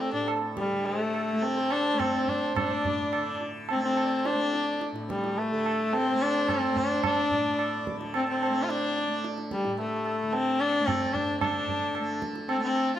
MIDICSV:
0, 0, Header, 1, 5, 480
1, 0, Start_track
1, 0, Tempo, 568182
1, 235, Time_signature, 4, 2, 24, 8
1, 3113, Tempo, 559180
1, 5993, Tempo, 549954
1, 8393, Tempo, 540054
1, 11240, End_track
2, 0, Start_track
2, 0, Title_t, "Harmonium"
2, 0, Program_c, 0, 20
2, 0, Note_on_c, 0, 69, 46
2, 326, Note_off_c, 0, 69, 0
2, 537, Note_on_c, 0, 69, 38
2, 590, Note_on_c, 0, 67, 46
2, 596, Note_off_c, 0, 69, 0
2, 780, Note_on_c, 0, 72, 38
2, 782, Note_off_c, 0, 67, 0
2, 835, Note_on_c, 0, 69, 50
2, 838, Note_off_c, 0, 72, 0
2, 1318, Note_on_c, 0, 72, 55
2, 1333, Note_off_c, 0, 69, 0
2, 1784, Note_off_c, 0, 72, 0
2, 1796, Note_on_c, 0, 72, 55
2, 2281, Note_on_c, 0, 74, 65
2, 2292, Note_off_c, 0, 72, 0
2, 2962, Note_off_c, 0, 74, 0
2, 3232, Note_on_c, 0, 72, 49
2, 3336, Note_off_c, 0, 72, 0
2, 3349, Note_on_c, 0, 72, 56
2, 3412, Note_off_c, 0, 72, 0
2, 3412, Note_on_c, 0, 74, 41
2, 3471, Note_off_c, 0, 74, 0
2, 3472, Note_on_c, 0, 72, 52
2, 3713, Note_on_c, 0, 74, 59
2, 3725, Note_off_c, 0, 72, 0
2, 4163, Note_off_c, 0, 74, 0
2, 4437, Note_on_c, 0, 67, 42
2, 4662, Note_off_c, 0, 67, 0
2, 4683, Note_on_c, 0, 69, 51
2, 5127, Note_off_c, 0, 69, 0
2, 5149, Note_on_c, 0, 72, 62
2, 5621, Note_off_c, 0, 72, 0
2, 5634, Note_on_c, 0, 72, 65
2, 6108, Note_on_c, 0, 74, 71
2, 6128, Note_off_c, 0, 72, 0
2, 6799, Note_off_c, 0, 74, 0
2, 7083, Note_on_c, 0, 72, 52
2, 7186, Note_off_c, 0, 72, 0
2, 7199, Note_on_c, 0, 72, 52
2, 7559, Note_on_c, 0, 74, 63
2, 7569, Note_off_c, 0, 72, 0
2, 8003, Note_off_c, 0, 74, 0
2, 11240, End_track
3, 0, Start_track
3, 0, Title_t, "Sarangi"
3, 0, Program_c, 1, 110
3, 0, Note_on_c, 1, 60, 80
3, 109, Note_off_c, 1, 60, 0
3, 114, Note_on_c, 1, 62, 70
3, 226, Note_off_c, 1, 62, 0
3, 486, Note_on_c, 1, 55, 73
3, 723, Note_on_c, 1, 56, 70
3, 735, Note_off_c, 1, 55, 0
3, 849, Note_off_c, 1, 56, 0
3, 849, Note_on_c, 1, 57, 70
3, 1199, Note_on_c, 1, 60, 81
3, 1212, Note_off_c, 1, 57, 0
3, 1448, Note_on_c, 1, 62, 94
3, 1461, Note_off_c, 1, 60, 0
3, 1682, Note_on_c, 1, 60, 82
3, 1695, Note_off_c, 1, 62, 0
3, 1931, Note_on_c, 1, 62, 77
3, 1944, Note_off_c, 1, 60, 0
3, 2165, Note_off_c, 1, 62, 0
3, 2174, Note_on_c, 1, 62, 74
3, 2849, Note_off_c, 1, 62, 0
3, 3134, Note_on_c, 1, 60, 75
3, 3237, Note_off_c, 1, 60, 0
3, 3252, Note_on_c, 1, 60, 82
3, 3610, Note_on_c, 1, 62, 84
3, 3623, Note_off_c, 1, 60, 0
3, 4086, Note_off_c, 1, 62, 0
3, 4331, Note_on_c, 1, 55, 67
3, 4570, Note_on_c, 1, 57, 77
3, 4583, Note_off_c, 1, 55, 0
3, 5042, Note_on_c, 1, 60, 94
3, 5055, Note_off_c, 1, 57, 0
3, 5292, Note_on_c, 1, 62, 99
3, 5304, Note_off_c, 1, 60, 0
3, 5526, Note_on_c, 1, 60, 87
3, 5539, Note_off_c, 1, 62, 0
3, 5764, Note_on_c, 1, 62, 90
3, 5777, Note_off_c, 1, 60, 0
3, 5998, Note_off_c, 1, 62, 0
3, 6001, Note_on_c, 1, 62, 91
3, 6686, Note_off_c, 1, 62, 0
3, 6960, Note_on_c, 1, 60, 77
3, 7070, Note_off_c, 1, 60, 0
3, 7085, Note_on_c, 1, 60, 82
3, 7380, Note_on_c, 1, 65, 59
3, 7393, Note_off_c, 1, 60, 0
3, 7442, Note_on_c, 1, 62, 88
3, 7455, Note_off_c, 1, 65, 0
3, 7918, Note_off_c, 1, 62, 0
3, 8160, Note_on_c, 1, 55, 69
3, 8379, Note_off_c, 1, 55, 0
3, 8398, Note_on_c, 1, 57, 73
3, 8872, Note_on_c, 1, 60, 91
3, 8885, Note_off_c, 1, 57, 0
3, 9112, Note_on_c, 1, 62, 102
3, 9126, Note_off_c, 1, 60, 0
3, 9343, Note_on_c, 1, 60, 87
3, 9357, Note_off_c, 1, 62, 0
3, 9589, Note_on_c, 1, 62, 75
3, 9602, Note_off_c, 1, 60, 0
3, 9822, Note_off_c, 1, 62, 0
3, 9828, Note_on_c, 1, 62, 78
3, 10516, Note_off_c, 1, 62, 0
3, 10792, Note_on_c, 1, 60, 80
3, 10904, Note_off_c, 1, 60, 0
3, 10914, Note_on_c, 1, 60, 88
3, 11193, Note_off_c, 1, 60, 0
3, 11240, End_track
4, 0, Start_track
4, 0, Title_t, "Tanpura"
4, 0, Program_c, 2, 104
4, 0, Note_on_c, 2, 45, 62
4, 0, Note_on_c, 2, 50, 62
4, 0, Note_on_c, 2, 57, 56
4, 101, Note_off_c, 2, 45, 0
4, 104, Note_on_c, 2, 45, 54
4, 610, Note_off_c, 2, 50, 0
4, 613, Note_on_c, 2, 50, 48
4, 1122, Note_off_c, 2, 57, 0
4, 1122, Note_on_c, 2, 57, 50
4, 1632, Note_off_c, 2, 57, 0
4, 1632, Note_on_c, 2, 57, 53
4, 2140, Note_off_c, 2, 45, 0
4, 2143, Note_on_c, 2, 45, 49
4, 2661, Note_off_c, 2, 50, 0
4, 2665, Note_on_c, 2, 50, 56
4, 3166, Note_off_c, 2, 57, 0
4, 3166, Note_on_c, 2, 57, 55
4, 3667, Note_off_c, 2, 57, 0
4, 3667, Note_on_c, 2, 57, 54
4, 4171, Note_off_c, 2, 45, 0
4, 4175, Note_on_c, 2, 45, 53
4, 4685, Note_off_c, 2, 50, 0
4, 4689, Note_on_c, 2, 50, 55
4, 5208, Note_off_c, 2, 57, 0
4, 5208, Note_on_c, 2, 57, 63
4, 5718, Note_off_c, 2, 57, 0
4, 5718, Note_on_c, 2, 57, 68
4, 6226, Note_off_c, 2, 45, 0
4, 6230, Note_on_c, 2, 45, 56
4, 6742, Note_off_c, 2, 50, 0
4, 6745, Note_on_c, 2, 50, 55
4, 7254, Note_off_c, 2, 57, 0
4, 7254, Note_on_c, 2, 57, 53
4, 7766, Note_off_c, 2, 57, 0
4, 7766, Note_on_c, 2, 57, 52
4, 8268, Note_off_c, 2, 45, 0
4, 8272, Note_on_c, 2, 45, 62
4, 8783, Note_off_c, 2, 50, 0
4, 8787, Note_on_c, 2, 50, 57
4, 9290, Note_off_c, 2, 57, 0
4, 9290, Note_on_c, 2, 57, 56
4, 9836, Note_off_c, 2, 50, 0
4, 9836, Note_on_c, 2, 50, 51
4, 10342, Note_off_c, 2, 57, 0
4, 10342, Note_on_c, 2, 57, 55
4, 10857, Note_off_c, 2, 57, 0
4, 10857, Note_on_c, 2, 57, 54
4, 11240, Note_off_c, 2, 45, 0
4, 11240, Note_off_c, 2, 50, 0
4, 11240, Note_off_c, 2, 57, 0
4, 11240, End_track
5, 0, Start_track
5, 0, Title_t, "Tabla"
5, 0, Note_on_c, 9, 62, 51
5, 81, Note_off_c, 9, 62, 0
5, 236, Note_on_c, 9, 60, 66
5, 321, Note_off_c, 9, 60, 0
5, 480, Note_on_c, 9, 37, 52
5, 565, Note_off_c, 9, 37, 0
5, 725, Note_on_c, 9, 63, 67
5, 810, Note_off_c, 9, 63, 0
5, 965, Note_on_c, 9, 60, 55
5, 1050, Note_off_c, 9, 60, 0
5, 1204, Note_on_c, 9, 63, 66
5, 1289, Note_off_c, 9, 63, 0
5, 1440, Note_on_c, 9, 60, 58
5, 1525, Note_off_c, 9, 60, 0
5, 1687, Note_on_c, 9, 60, 75
5, 1687, Note_on_c, 9, 64, 62
5, 1772, Note_off_c, 9, 60, 0
5, 1772, Note_off_c, 9, 64, 0
5, 1926, Note_on_c, 9, 64, 45
5, 2010, Note_off_c, 9, 64, 0
5, 2167, Note_on_c, 9, 60, 93
5, 2167, Note_on_c, 9, 64, 83
5, 2251, Note_off_c, 9, 60, 0
5, 2251, Note_off_c, 9, 64, 0
5, 2407, Note_on_c, 9, 64, 64
5, 2491, Note_off_c, 9, 64, 0
5, 2643, Note_on_c, 9, 60, 72
5, 2727, Note_off_c, 9, 60, 0
5, 2879, Note_on_c, 9, 62, 52
5, 2964, Note_off_c, 9, 62, 0
5, 3115, Note_on_c, 9, 60, 67
5, 3200, Note_off_c, 9, 60, 0
5, 3359, Note_on_c, 9, 60, 52
5, 3445, Note_off_c, 9, 60, 0
5, 3601, Note_on_c, 9, 62, 73
5, 3687, Note_off_c, 9, 62, 0
5, 3843, Note_on_c, 9, 62, 50
5, 3929, Note_off_c, 9, 62, 0
5, 4080, Note_on_c, 9, 62, 72
5, 4166, Note_off_c, 9, 62, 0
5, 4205, Note_on_c, 9, 62, 54
5, 4291, Note_off_c, 9, 62, 0
5, 4327, Note_on_c, 9, 37, 52
5, 4413, Note_off_c, 9, 37, 0
5, 4446, Note_on_c, 9, 62, 55
5, 4532, Note_off_c, 9, 62, 0
5, 4564, Note_on_c, 9, 63, 68
5, 4650, Note_off_c, 9, 63, 0
5, 4808, Note_on_c, 9, 60, 51
5, 4894, Note_off_c, 9, 60, 0
5, 5042, Note_on_c, 9, 63, 70
5, 5127, Note_off_c, 9, 63, 0
5, 5284, Note_on_c, 9, 60, 51
5, 5370, Note_off_c, 9, 60, 0
5, 5517, Note_on_c, 9, 60, 71
5, 5517, Note_on_c, 9, 64, 64
5, 5603, Note_off_c, 9, 60, 0
5, 5603, Note_off_c, 9, 64, 0
5, 5751, Note_on_c, 9, 64, 45
5, 5837, Note_off_c, 9, 64, 0
5, 5989, Note_on_c, 9, 60, 93
5, 5989, Note_on_c, 9, 64, 86
5, 6077, Note_off_c, 9, 60, 0
5, 6077, Note_off_c, 9, 64, 0
5, 6228, Note_on_c, 9, 64, 60
5, 6316, Note_off_c, 9, 64, 0
5, 6472, Note_on_c, 9, 60, 72
5, 6560, Note_off_c, 9, 60, 0
5, 6718, Note_on_c, 9, 37, 55
5, 6806, Note_off_c, 9, 37, 0
5, 6838, Note_on_c, 9, 62, 53
5, 6925, Note_off_c, 9, 62, 0
5, 6953, Note_on_c, 9, 60, 80
5, 7041, Note_off_c, 9, 60, 0
5, 7203, Note_on_c, 9, 60, 53
5, 7291, Note_off_c, 9, 60, 0
5, 7445, Note_on_c, 9, 62, 72
5, 7532, Note_off_c, 9, 62, 0
5, 7683, Note_on_c, 9, 62, 47
5, 7771, Note_off_c, 9, 62, 0
5, 7917, Note_on_c, 9, 62, 67
5, 8005, Note_off_c, 9, 62, 0
5, 8033, Note_on_c, 9, 62, 53
5, 8120, Note_off_c, 9, 62, 0
5, 8150, Note_on_c, 9, 37, 47
5, 8237, Note_off_c, 9, 37, 0
5, 8267, Note_on_c, 9, 62, 55
5, 8355, Note_off_c, 9, 62, 0
5, 8391, Note_on_c, 9, 63, 73
5, 8480, Note_off_c, 9, 63, 0
5, 8630, Note_on_c, 9, 60, 51
5, 8719, Note_off_c, 9, 60, 0
5, 8872, Note_on_c, 9, 63, 73
5, 8960, Note_off_c, 9, 63, 0
5, 9115, Note_on_c, 9, 60, 48
5, 9204, Note_off_c, 9, 60, 0
5, 9360, Note_on_c, 9, 60, 74
5, 9360, Note_on_c, 9, 64, 69
5, 9449, Note_off_c, 9, 60, 0
5, 9449, Note_off_c, 9, 64, 0
5, 9596, Note_on_c, 9, 64, 46
5, 9685, Note_off_c, 9, 64, 0
5, 9837, Note_on_c, 9, 60, 87
5, 9837, Note_on_c, 9, 64, 83
5, 9926, Note_off_c, 9, 60, 0
5, 9926, Note_off_c, 9, 64, 0
5, 10076, Note_on_c, 9, 64, 60
5, 10165, Note_off_c, 9, 64, 0
5, 10313, Note_on_c, 9, 60, 70
5, 10402, Note_off_c, 9, 60, 0
5, 10554, Note_on_c, 9, 37, 54
5, 10643, Note_off_c, 9, 37, 0
5, 10672, Note_on_c, 9, 62, 60
5, 10761, Note_off_c, 9, 62, 0
5, 10793, Note_on_c, 9, 60, 73
5, 10882, Note_off_c, 9, 60, 0
5, 11033, Note_on_c, 9, 60, 55
5, 11122, Note_off_c, 9, 60, 0
5, 11240, End_track
0, 0, End_of_file